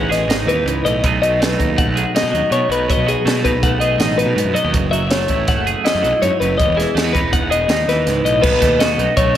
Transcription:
Already playing: A1 A2 E3 C#4 D#4 F#5
0.10 G#4 D#5, snare, closed hi-hat
0.27 G#1 D#4, snare, closed hi-hat
0.46 D#2 E3 B4, closed hi-hat
0.65 C#2 G#2, closed hi-hat
0.84 B1 A2 D#5, closed hi-hat
1.03 B1 B2 F#3 A3 D#4 G#4, kick, closed hi-hat
1.22 F#3 D#5, closed hi-hat
1.40 A3 B4, snare, closed hi-hat
1.58 D#2 D#4, kick, closed hi-hat
1.77 A3 F#5, kick, closed hi-hat
1.86 B1
1.96 G#4, closed hi-hat
2.15 D#4 D#5, snare, closed hi-hat
2.23 B2
2.31 D#2 F#3, closed hi-hat
2.50 B2 C#5, closed hi-hat
2.69 B1 F#3 B4, closed hi-hat
2.89 B2 D#5, kick, closed hi-hat
2.98 B1
3.06 F#3 G#4, closed hi-hat
3.25 B2 A3, snare, closed hi-hat
3.44 B2 D#4 B4, kick, closed hi-hat
3.52 B1
3.63 A3 F#5, kick, closed hi-hat
3.80 G#4 D#5, closed hi-hat
3.98 A1 D#4, snare, closed hi-hat
4.17 F#3 B4, closed hi-hat
4.25 B2
4.35 G#2 B2, closed hi-hat
4.45 F#2
4.54 F#3 D#5, closed hi-hat
4.64 D#2
4.72 F#1 F#2, kick, closed hi-hat
4.91 F#3 E5, closed hi-hat
5.10 A3 C#5, snare, closed hi-hat
5.28 A1 E4, kick, closed hi-hat
5.48 A3 F#5, kick, snare, closed hi-hat
5.57 F#1
5.67 G#4, closed hi-hat
5.84 E4 D#5, snare, closed hi-hat
5.94 F#2
6.02 B1 F#3, closed hi-hat
6.22 F#2 G#2 C#5, closed hi-hat
6.40 F#1 F#2 B4, closed hi-hat
6.58 E1 E2 D#5, kick, closed hi-hat
6.66 E1
6.76 E3 G#4, closed hi-hat
6.80 snare
6.95 E2 A3, snare, closed hi-hat
7.04 B3
7.13 E2 D#4 B4, kick, closed hi-hat
7.22 E1
7.33 B3 F#5, kick, closed hi-hat
7.50 G#4 D#5, closed hi-hat
7.68 D#2 D#4, snare, closed hi-hat
7.87 D#2 E3 B4, snare, closed hi-hat
8.06 C#2 G#2, snare, closed hi-hat
8.24 B1 A2 D#5, closed hi-hat
8.41 B1 B2 B4, kick, crash
8.52 B1
8.60 D#2 A3, kick, snare, closed hi-hat
8.79 F#4 D#5, snare, closed hi-hat
8.98 B1 D#4, closed hi-hat
9.17 B1 A3 C#5, kick, closed hi-hat
9.34 A1

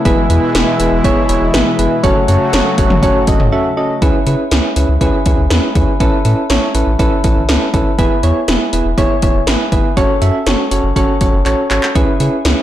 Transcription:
0.05 E1 B2 E3 G#3 B3 E4 G#4 B4, kick, closed hi-hat
0.30 E2 B3 E4 G#4 B4, closed hi-hat
0.55 E1 B3 E4 G#4 B4, snare, closed hi-hat
0.80 E1 B3 E4 G#4 B4, closed hi-hat
0.92 E1
1.04 E1 B3 E4 G#4 C#5, kick, closed hi-hat
1.29 E1 B3 E4 G#4 C#5, closed hi-hat
1.42 E1
1.54 G#1 B3 E4 G#4 B4, snare, closed hi-hat
1.79 F#1 B3 E4 G#4 B4, closed hi-hat
2.03 F#1 C#3 F#3 A3 C#4 F#4 A4 C#5, kick, closed hi-hat
2.28 F#2 C#4 F#4 A4 C#5, closed hi-hat
2.53 F#1 C#4 F#4 A4 C#5, snare, closed hi-hat
2.78 F#1 C#4 F#4 A4 C#5, kick, closed hi-hat
2.90 F#1, mid tom
3.03 F#1 C#4 F#4 A4 C#5, kick, closed hi-hat
3.27 F#1 C#4 F#4 A4 D#5, kick, closed hi-hat
3.40 F#1, mid tom
3.52 C#4 F#4 A4 E5
3.77 C#4 F#4 A4 D#5
4.02 C#2 C#4 E4 G#4 B4, kick, closed hi-hat
4.27 C#3 C#4 E4 G#4 B4, closed hi-hat
4.51 C#2 C#4 E4 G#4 B4, snare, closed hi-hat
4.76 C#2 C#4 E4 G#4 B4, closed hi-hat
4.89 C#2
5.01 C#2 C#4 E4 G#4 B4, kick, closed hi-hat
5.26 C#2 C#4 E4 G#4 B4, kick, closed hi-hat
5.38 C#2
5.50 E2 C#4 E4 G#4 B4, snare, closed hi-hat
5.75 D#2 C#4 E4 G#4 B4, kick, closed hi-hat
6.00 A1 C#4 E4 A4 B4, kick, closed hi-hat
6.25 A2 C#4 E4 A4 B4, closed hi-hat
6.50 A1 C#4 E4 A4 C#5, snare, closed hi-hat
6.75 A1 C#4 E4 A4 B4, closed hi-hat
6.87 A1
6.99 A1 C#4 E4 A4 B4, kick, closed hi-hat
7.24 A1 C#4 E4 A4 B4, kick, closed hi-hat
7.37 A1
7.49 C#2 C#4 E4 A4 B4, snare, closed hi-hat
7.74 B1 C#4 E4 A4 B4, kick, closed hi-hat
7.99 E1 B3 E4 G#4 B4, kick, closed hi-hat
8.23 E2 B3 E4 G#4 C#5, closed hi-hat
8.48 E1 B3 E4 G#4 B4, snare, closed hi-hat
8.73 E1 B3 E4 G#4 B4, closed hi-hat
8.85 E1
8.98 E1 B3 E4 G#4 C#5, kick, closed hi-hat
9.22 E1 B3 E4 G#4 C#5, kick, closed hi-hat
9.35 E1
9.47 G#1 B3 E4 G#4 B4, snare, closed hi-hat
9.72 F#1 B3 E4 G#4 B4, kick, closed hi-hat
9.97 F#1 C#4 F#4 A4 C#5, kick, closed hi-hat
10.22 F#2 C#4 F#4 A4 E5, closed hi-hat
10.46 F#1 C#4 F#4 A4 C#5, snare, closed hi-hat
10.71 F#1 C#4 F#4 A4 C#5, closed hi-hat
10.84 F#1
10.96 F#1 C#4 F#4 A4 C#5, kick, closed hi-hat
11.21 F#1 C#4 F#4 A4 C#5, kick, closed hi-hat
11.33 F#1
11.46 A1 C#4 F#4 A4 C#5, clap, closed hi-hat
11.71 G#1 C#4 F#4 A4 C#5, clap, closed hi-hat
11.83 clap
11.95 C#2 C#4 E4 G#4 B4, kick, closed hi-hat
12.20 C#3 C#4 E4 G#4 B4, closed hi-hat
12.45 C#2 C#4 E4 G#4 B4, snare, closed hi-hat

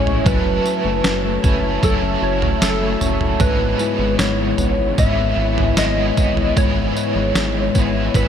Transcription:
Already playing: A1 A2 E3 G#3 C#4 E4 C#5 G#5
0.05 E4, floor tom
0.24 F#1 F#3 A3 C#4 E4 F#4 B4 C#5 E5 A5, kick, floor tom, tambourine
0.45 C#4
0.64 E4, tambourine
0.84 F#1 A3
1.04 F#1 C#4, snare, tambourine
1.24 A3
1.43 F#1 C#4 E4, kick, floor tom, tambourine
1.47 A3
1.63 E4
1.82 F#1 F#3 A3 C#4 E4 A4, kick, floor tom, tambourine
2.02 C#4
2.22 F#1 E4 C#5
2.42 A3, floor tom
2.61 F#1 F#3 A3 C#4 A4, snare, tambourine
2.65 E4
2.82 A3
3.01 F#1 C#4, floor tom, tambourine
3.21 E4, floor tom
3.39 G#1 G#2 C#3 E3 B4, kick, floor tom, tambourine
3.43 G#3 B3 E4
3.61 B3
3.79 E4, tambourine
3.99 G#1 G#3
4.19 G#1 B3 C#5, snare, tambourine
4.40 G#3
4.58 G#1 B3, floor tom, tambourine
4.80 E4
4.98 G#1 G#2 C#3 E3 G#3 B3 E4 E5, kick, floor tom, tambourine
5.20 B3
5.37 G#1 E4
5.58 G#3, floor tom
5.76 G#1 E3 G#3 B3 D#5, snare, tambourine
5.80 B3 E4
5.98 G#3
6.17 G#1 B3, kick, floor tom, tambourine
6.37 E4, floor tom
6.56 G#1 G#2 C#3 E3 G#3 B3 E4 C#5, kick, floor tom, tambourine
6.76 B3
6.96 E4, tambourine
7.15 G#1 G#3
7.35 G#1 B3, snare, tambourine
7.55 G#3
7.74 G#1 B3 E4, kick, tambourine
7.78 E3 G#3
7.94 E4
8.13 G#1 G#2 C#3 E3 G#3 B3 E4 B4, kick, floor tom, tambourine

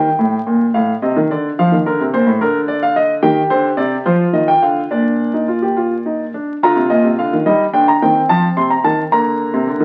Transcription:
Already playing: G5
0.19 A2
0.47 A#2
0.74 A2 F5
1.02 C3 D#5
1.16 D#3
1.31 D3 D5
1.59 F3 F5
1.72 D#3
1.86 D3 A#4
2.00 C3
2.13 A#2 C5
2.27 A2
2.41 D3 A#4
2.68 D5
2.83 F5
2.96 D#5
3.23 D#3 G4 G5
3.50 D3 C5
3.77 C3 D5
4.06 F3 F4 C5
4.33 D#3 D#5
4.48 G5
4.62 D3 F5
4.91 A#2 D4 D5
5.34 D#4
5.48 F4
5.62 G4
5.77 F4
6.06 D#4
6.34 D4
6.63 D3 F4 A#5
6.76 C3
6.90 A#2 D#5
7.04 C3
7.19 D3 F5
7.33 D#3
7.46 G3 D#4 D#5
7.73 D3 D4 G5
7.88 A#5
8.02 D#3 C4 G5
8.29 F3 A5
8.57 C3 C6
8.70 A#5
8.84 D#3 A5
9.12 D3 A#3 A#5
9.54 C3
9.67 D3
9.80 D#3

